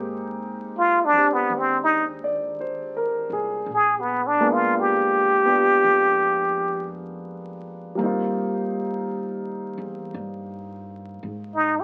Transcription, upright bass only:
Already playing: G#1
1.13 D#2
1.50 D#2
3.30 C2
3.66 A#1
5.84 F2
7.99 D#2
9.78 E2
10.14 G2
11.23 G#2

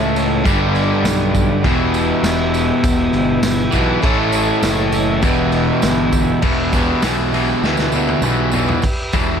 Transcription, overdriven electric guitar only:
Already playing: A2 E3 A3
0.44 G2 D3
0.48 G3
1.64 E2 B2 E3
3.71 E2 B2 E3
4.02 A2 E3 A3
5.22 E2 B2 E3
6.42 E2 B2 E3
6.74 E2 B2 E3
7.04 E2 B2 E3
7.33 E2 B2 E3
7.64 E2 B2 E3
7.95 E2 B2 E3
8.23 E2 B2 E3
8.53 E2 B2 E3
9.14 E2 B2 E3

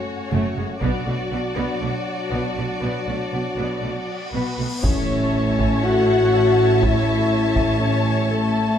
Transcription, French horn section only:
Already playing: A3 C#4
0.80 F#3 D4
4.33 B3
4.83 C#4
5.84 F#4
6.83 E4
7.80 C#4
8.31 A3

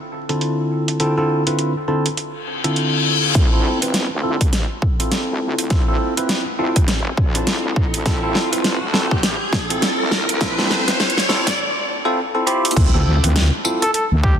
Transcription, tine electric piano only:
0.29 D3 C4 E4 F4 A4
1.00 D3 C4 E4 F4 A4
1.17 D3 C4 E4 F4 A4
1.47 D3 C4 E4 F4 B4
1.88 D3 C4 E4 F4 A4
2.64 D3 C4 E4 F4 A4
3.35 C4 E4 F4 A4
3.53 C4 E4 F4 A4
3.82 C4 E4 F4 B4
4.23 C4 E4 F4 A4
5.00 C4 E4 F4 A4
5.70 C4 E4 F4 A4
5.88 C4 E4 F4 A4
6.17 C4 E4 F4 B4
6.59 C4 E4 F4 A4
7.35 C4 E4 F4 A4
8.05 C4 E4 F4 A4
8.23 C4 E4 F4 A4
8.52 C4 E4 F4 B4
8.93 C4 E4 F4 A4
9.70 C4 E4 F4 A4
10.41 C4 E4 F4 A4
10.58 C4 E4 F4 A4
10.88 C4 E4 F4 B4
11.29 C4 E4 F4 A4
12.05 C4 E4 F4 A4
12.35 C4 E4 F4 A4
12.47 C4 E4 F4 G4
12.76 C4 E4 F4 A4
12.94 C4 E4 F4 A4
13.23 C4 E4 F4 B4
13.65 C4 E4 F4 A4

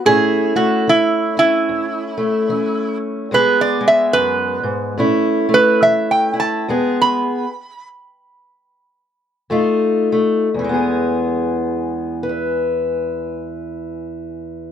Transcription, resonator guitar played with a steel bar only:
0.06 G#4
0.56 F#4
0.89 E4
1.39 E4
3.34 B4
3.61 D5
3.88 E5
4.13 B4
5.54 B4
5.83 E5
6.11 G5
6.40 A5
7.02 B5

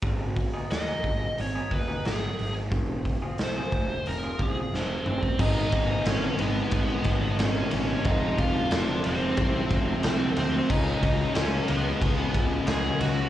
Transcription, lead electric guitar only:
0.71 D#5
1.41 C#5
1.73 B4
2.07 G#4
3.43 C5
4.07 A#4
4.42 G#4
4.75 C4 C5
5.08 C4 C5
5.40 D#4 D#5
5.75 D#4 D#5
6.07 C#4 C#5
6.40 B3 B4
7.39 C#4 C#5
7.71 C#4 C#5
8.06 D#4 D#5
8.39 F4 F5
8.72 D4 D5
9.06 C4 C5
10.04 C4 C5
10.39 C4 C5
10.71 D#4 D#5
11.03 D#4 D#5
11.34 C#4 C#5
11.68 B3 B4
12.69 G#4 G#5
13.00 F#4 F#5

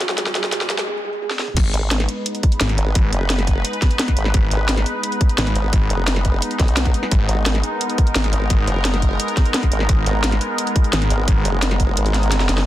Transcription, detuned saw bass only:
0.01 G#1
0.18 G#1
0.35 F#1
1.57 G#1
2.61 G#1
2.95 G#1
4.34 G#1
5.38 G#1
5.73 G#1
7.12 G#1
8.16 G#1
8.50 G#1
9.89 G#1
10.93 G#1
11.28 G#1

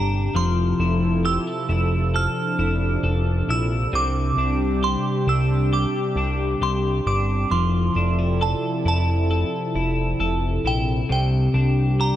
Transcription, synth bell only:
Already playing: A#5
0.36 C6
1.25 E6
2.16 F6
3.50 E6
3.95 D6
4.84 C6
5.29 E6
5.73 D6
6.63 C6
7.07 D6
7.51 C6
8.42 A5
8.88 A5
10.67 G5
11.12 G5
12.01 A#5

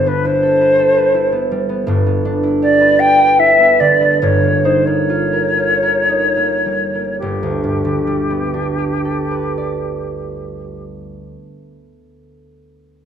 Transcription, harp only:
Already playing: G1 G2 B3 E4 G4 A4 B4
0.06 D4
0.25 E4
0.43 A4
0.61 B4
0.79 A4
0.97 B4
1.14 E4
1.32 B3
1.51 G3
1.69 B3
1.87 G1 G2
2.06 B3
2.25 D4
2.43 E4
2.62 G4
2.81 B4
2.99 G4
3.18 B4
3.39 E4
3.59 B3
3.80 D3
4.01 B3
4.22 G1 G2
4.44 A#3
4.65 D#4
4.87 A#3
5.10 F4
5.33 A#4
5.57 F4
5.83 A#4
6.09 D#4
6.37 A#3
6.66 G3
6.95 A#3
7.22 G1
7.43 D2
7.64 G2
7.85 D3
8.07 G3
8.30 B3
8.54 D4
8.78 G4
9.05 A4
9.31 B4
9.58 D5

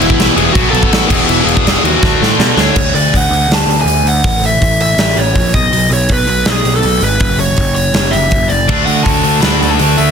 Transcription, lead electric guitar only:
0.00 E4
0.36 G#4
0.53 F#4
0.70 A4
1.08 G#4
1.24 E4
1.44 G#4
1.85 F#4
2.60 C#5
2.95 D5
3.17 F#5
3.54 A5
3.81 G#5
4.08 F#5
4.46 E5
4.82 E5
5.18 C#5
5.54 D#5
5.93 C#5
6.13 B4
6.47 G#4
6.76 A4
7.03 B4
7.40 C#5
7.75 C#5
8.11 E5
8.49 D5
8.85 F#5
9.03 A5
9.41 B5
9.70 A5
9.97 E5

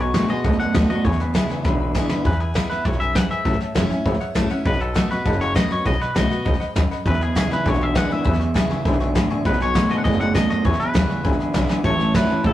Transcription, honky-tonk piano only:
0.14 B4 D#5 F#5
0.28 B4 D#5 G#5
0.44 B4 D#5 F#5
0.60 B4 D#5 F#5
0.74 B4 D#5 F#5
0.90 B4 D#5 F#5
1.06 B4 E5 G#5
1.20 B4 E5 G#5
1.35 B4 E5 G#5
1.50 B4 E5 G#5
1.65 B4 E5 B5
1.80 B4 E5 B5
1.95 B4 E5 G#5
2.10 B4 E5 B5
2.25 B4 E5 G#5
2.40 B4 E5 B5
2.55 B4 E5 B5
2.69 B4 E5 B5
2.84 B4 E5 B5
3.00 B4 E5 G#5
3.15 B4 E5 G#5
3.30 B4 E5 G#5
3.45 C#5 E5 A5
3.60 C#5 E5 A5
3.75 C#5 E5 F#5
3.90 C#5 E5 G#5
4.05 C#5 E5 B5
4.20 C#5 E5 F#5
4.35 C#5 E5 A5
4.50 C#5 E5 F#5
4.66 D#5 F#5 B5
4.81 D#5 F#5 B5
4.95 D#5 F#5 A5
5.11 D#5 F#5 C#6
5.25 D#5 F#5 A5
5.40 D#5 F#5 B5
5.55 D#5 F#5 B5
5.70 D#5 F#5 B5
5.85 D#5 F#5 B5
6.00 D#5 F#5 B5
6.15 D#5 F#5 B5
6.31 D#5 F#5 B5
6.45 D#5 F#5 B5
6.60 D#5 F#5 B5
6.76 D#5 F#5 B5
6.91 D#5 F#5 B5
7.06 E5 G#5 B5
7.21 E5 G#5 B5
7.36 E5 G#5 C#6
7.51 E5 G#5 B5
7.65 E5 G#5 B5
7.80 E5 G#5 B5
7.95 E5 G#5 B5
8.09 E5 G#5 B5
8.24 E5 G#5 B5
8.39 E5 G#5 C#6
8.54 E5 G#5 B5
8.70 E5 G#5 C#6
8.85 E5 G#5 B5
9.00 E5 G#5 C#6
9.14 E5 G#5 B5
9.30 E5 G#5 C#6
9.45 D#5 F#5 B5
9.60 D#5 F#5 G#5
9.76 D#5 F#5 B5
9.90 D#5 F#5 A5
10.05 D#5 F#5 G#5
10.19 D#5 F#5 A5
10.34 D#5 F#5 G#5
10.49 D#5 F#5 C#6
10.64 E5 G#5 B5
10.80 E5 G#5 C#6
10.95 E5 G#5 B5
11.09 E5 G#5 C#6
11.24 E5 G#5 B5
11.39 E5 G#5 B5
11.54 E5 G#5 B5
11.69 E5 G#5 B5
11.85 C#5 E5 A5
11.99 C#5 E5 A5
12.14 C#5 E5 B5
12.29 C#5 E5 A5
12.44 C#5 E5 A5

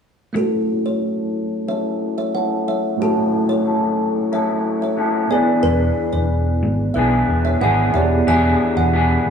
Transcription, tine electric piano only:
0.33 A3 E4 F#4
0.38 C#5
2.97 A3 E4 F#4
3.02 A4
5.28 B3 E4 G#4
5.34 D5
7.92 B3 E4 G4
7.97 D5
8.02 G#4

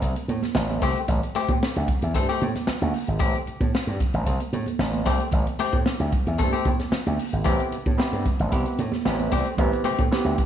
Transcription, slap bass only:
0.02 C2
0.28 A2
0.55 A1
0.82 C2
1.08 A1
1.35 muted slap bass stroke
1.49 A2
1.76 D2
2.02 E2
2.14 G2
2.42 A2
2.68 muted slap bass stroke
2.82 D2
3.08 G#1
3.21 A1
3.48 muted slap bass stroke
3.60 A2
3.87 G2
4.14 A1
4.26 C2
4.53 A2
4.79 A1
5.06 C2
5.33 A1
5.60 muted slap bass stroke
5.73 A2
6.00 D2
6.27 E2
6.39 G2
6.66 A2
6.92 muted slap bass stroke
7.06 D2
7.33 G#1
7.46 A1
7.72 muted slap bass stroke
7.86 A2
8.13 G2
8.40 A1
8.52 C2
8.79 A2
9.05 A1
9.32 C2
9.58 A1
9.85 muted slap bass stroke
9.98 A2
10.25 D2

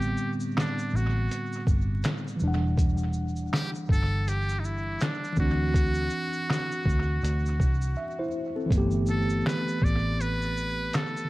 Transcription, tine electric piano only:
Already playing: A2 D3 G3 B3 C4
2.36 E3 F#3
2.44 G3 D4 F#5
5.33 E3 C4
5.40 D4 F#4
7.97 E5
8.19 E4 C5
8.56 C4 A4
8.66 E3 A3
8.74 B3
8.78 G4
11.25 D3

